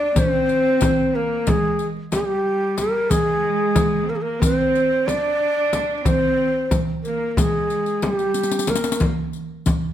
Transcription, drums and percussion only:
0.16 riq medium
0.16 frame drum medium
0.16 darbuka dum medium
0.49 riq soft
0.81 riq medium
0.81 frame drum medium
0.81 darbuka dum medium
1.15 darbuka ka soft
1.47 riq medium
1.47 frame drum medium
1.47 darbuka dum medium
1.79 riq soft
1.79 darbuka ka soft
1.97 darbuka ka soft
2.12 riq soft
2.12 darbuka tek medium
2.12 frame drum medium
2.29 darbuka ka soft
2.77 riq medium
2.77 darbuka tek medium
2.77 frame drum medium
3.10 riq medium
3.10 darbuka dum medium
3.10 frame drum medium
3.76 riq medium
3.76 frame drum medium
3.76 darbuka dum medium
4.10 darbuka ka soft
4.42 riq medium
4.42 frame drum medium
4.42 darbuka dum medium
4.75 riq soft
4.75 darbuka ka soft
4.91 darbuka ka soft
5.08 riq soft
5.08 darbuka tek medium
5.08 frame drum medium
5.24 darbuka ka soft
5.73 riq soft
5.73 darbuka tek medium
5.73 frame drum medium
6.05 riq medium
6.05 frame drum medium
6.05 darbuka dum medium
6.39 darbuka ka soft
6.71 riq medium
6.71 frame drum medium
6.71 darbuka dum medium
7.04 riq soft
7.04 darbuka ka soft
7.37 riq medium
7.37 frame drum medium
7.37 darbuka dum medium
7.70 riq soft
7.70 darbuka ka soft
7.86 riq soft
7.86 darbuka ka soft
8.02 riq soft
8.02 darbuka tek medium
8.02 frame drum medium
8.19 riq soft
8.19 darbuka ka soft
8.34 riq medium
8.43 riq medium
8.51 riq medium
8.59 riq medium
8.67 riq medium
8.67 frame drum medium
8.75 riq medium
8.84 riq medium
8.92 riq medium
9.00 riq medium
9.00 darbuka dum medium
9.00 frame drum medium
9.33 riq soft
9.66 riq medium
9.66 darbuka dum medium
9.66 frame drum medium

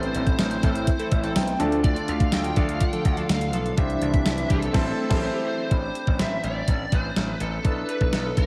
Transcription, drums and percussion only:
0.03 closed hi-hat soft
0.15 closed hi-hat medium
0.27 kick medium
0.27 closed hi-hat soft
0.39 snare loud
0.39 closed hi-hat medium
0.39 tambourine medium
0.51 closed hi-hat medium
0.63 kick medium
0.63 closed hi-hat medium
0.75 closed hi-hat medium
0.87 kick medium
0.87 closed hi-hat loud
0.99 closed hi-hat medium
1.11 kick loud
1.11 closed hi-hat medium
1.24 closed hi-hat soft
1.36 snare loud
1.36 closed hi-hat medium
1.36 tambourine medium
1.48 closed hi-hat medium
1.60 closed hi-hat medium
1.72 closed hi-hat soft
1.84 kick loud
1.84 closed hi-hat medium
1.96 closed hi-hat soft
2.08 closed hi-hat medium
2.20 kick medium
2.20 closed hi-hat soft
2.32 snare loud
2.32 closed hi-hat medium
2.32 tambourine medium
2.44 closed hi-hat medium
2.56 kick medium
2.56 closed hi-hat medium
2.69 closed hi-hat medium
2.81 kick medium
2.81 closed hi-hat loud
2.93 closed hi-hat medium
3.05 kick medium
3.05 closed hi-hat medium
3.17 closed hi-hat soft
3.29 snare loud
3.29 closed hi-hat medium
3.29 tambourine medium
3.41 closed hi-hat medium
3.53 closed hi-hat medium
3.66 closed hi-hat soft
3.78 kick loud
3.78 closed hi-hat medium
3.90 closed hi-hat soft
4.02 closed hi-hat medium
4.14 kick medium
4.14 closed hi-hat soft
4.26 snare loud
4.26 closed hi-hat medium
4.26 tambourine medium
4.38 closed hi-hat medium
4.50 kick medium
4.50 closed hi-hat medium
4.62 closed hi-hat medium
4.74 kick loud
4.74 snare loud
4.74 crash medium
5.11 kick loud
5.11 snare loud
5.11 crash medium
5.71 kick loud
5.71 closed hi-hat medium
5.95 closed hi-hat medium
6.07 kick medium
6.19 snare loud
6.19 closed hi-hat medium
6.44 closed hi-hat medium
6.68 kick medium
6.68 closed hi-hat loud
6.92 kick medium
6.92 closed hi-hat medium
7.16 snare loud
7.16 closed hi-hat medium
7.40 closed hi-hat medium
7.65 kick loud
7.65 closed hi-hat medium
7.89 closed hi-hat medium
8.01 kick medium
8.13 snare loud
8.13 closed hi-hat medium
8.37 kick medium
8.37 closed hi-hat medium

